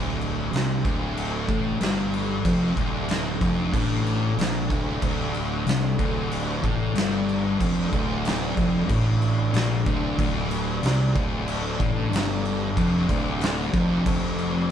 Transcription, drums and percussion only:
0.21 crash medium
0.53 snare loud
0.53 crash medium
0.85 kick loud
0.85 crash medium
1.17 crash medium
1.49 kick loud
1.49 crash medium
1.81 snare loud
1.81 crash medium
2.14 crash medium
2.45 kick loud
2.45 crash medium
2.77 kick loud
2.77 crash medium
3.09 snare loud
3.09 crash medium
3.41 kick loud
3.41 crash medium
3.74 kick loud
3.74 crash medium
4.07 crash medium
4.39 snare loud
4.39 crash medium
4.70 kick loud
4.70 crash medium
5.02 kick loud
5.02 crash medium
5.34 crash medium
5.67 snare loud
5.67 crash medium
5.99 kick loud
5.99 crash medium
6.32 crash medium
6.64 kick loud
6.64 crash soft
6.95 snare loud
6.95 crash medium
7.29 crash medium
7.61 kick loud
7.61 crash medium
7.93 kick loud
7.93 crash medium
8.25 snare loud
8.25 crash medium
8.57 kick loud
8.57 crash medium
8.89 kick loud
8.89 crash medium
9.22 crash medium
9.54 snare loud
9.54 crash medium
9.86 kick loud
9.86 crash medium
10.19 kick loud
10.19 crash medium
10.51 crash medium
10.83 snare loud
10.83 crash medium
11.16 kick loud
11.16 crash medium
11.48 crash medium
11.80 kick loud
11.80 crash medium
12.13 snare loud
12.13 crash medium
12.45 crash medium
12.77 kick loud
12.77 crash medium
13.09 kick loud
13.09 crash medium
13.41 snare loud
13.41 crash medium
13.74 kick loud
13.74 crash medium
14.06 kick loud
14.06 crash medium
14.39 crash medium

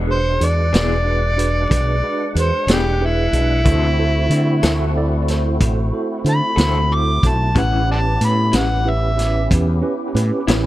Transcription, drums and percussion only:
0.41 closed hi-hat medium
0.74 snare loud
0.74 closed hi-hat medium
1.39 closed hi-hat medium
1.71 kick medium
1.71 closed hi-hat medium
2.36 closed hi-hat medium
2.68 snare loud
2.68 closed hi-hat medium
3.33 closed hi-hat medium
3.65 kick medium
3.65 closed hi-hat medium
4.31 closed hi-hat medium
4.63 snare medium
4.63 closed hi-hat medium
5.28 snare soft
5.28 closed hi-hat soft
5.61 kick medium
5.61 closed hi-hat medium
6.26 closed hi-hat medium
6.58 snare loud
6.58 closed hi-hat medium
7.23 kick medium
7.23 closed hi-hat medium
7.55 kick medium
7.55 closed hi-hat medium
8.21 closed hi-hat medium
8.53 snare loud
8.53 closed hi-hat medium
9.19 snare soft
9.19 closed hi-hat medium
9.51 kick medium
9.51 closed hi-hat medium
10.16 closed hi-hat medium
10.48 snare loud
10.48 closed hi-hat medium

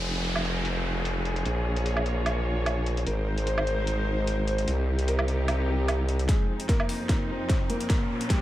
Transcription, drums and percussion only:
0.15 closed hi-hat soft
0.25 closed hi-hat medium
0.36 low woodblock medium
0.45 closed hi-hat soft
0.65 closed hi-hat medium
1.05 closed hi-hat medium
1.25 closed hi-hat soft
1.36 closed hi-hat soft
1.46 closed hi-hat medium
1.76 closed hi-hat medium
1.86 closed hi-hat medium
1.97 low woodblock medium
2.06 closed hi-hat soft
2.26 closed hi-hat medium
2.26 low woodblock medium
2.66 closed hi-hat medium
2.66 low woodblock medium
2.86 closed hi-hat medium
2.97 closed hi-hat soft
3.07 closed hi-hat medium
3.38 closed hi-hat medium
3.47 closed hi-hat medium
3.58 low woodblock medium
3.67 closed hi-hat soft
3.87 closed hi-hat medium
4.27 closed hi-hat medium
4.48 closed hi-hat soft
4.58 closed hi-hat soft
4.68 closed hi-hat medium
4.99 closed hi-hat soft
5.08 closed hi-hat medium
5.19 low woodblock medium
5.28 closed hi-hat soft
5.48 closed hi-hat medium
5.48 low woodblock medium
5.88 closed hi-hat medium
5.88 low woodblock medium
6.09 closed hi-hat soft
6.19 closed hi-hat soft
6.29 kick medium
6.29 snare soft
6.29 closed hi-hat medium
6.60 closed hi-hat medium
6.69 kick medium
6.69 snare soft
6.69 closed hi-hat medium
6.80 low woodblock medium
6.89 open hi-hat medium
7.09 kick medium
7.09 snare medium
7.09 closed hi-hat medium
7.49 kick medium
7.49 snare medium
7.49 closed hi-hat medium
7.70 closed hi-hat medium
7.80 closed hi-hat medium
7.90 kick medium
7.90 snare medium
7.90 closed hi-hat medium
8.21 closed hi-hat medium
8.30 kick medium
8.30 snare medium
8.30 closed hi-hat medium

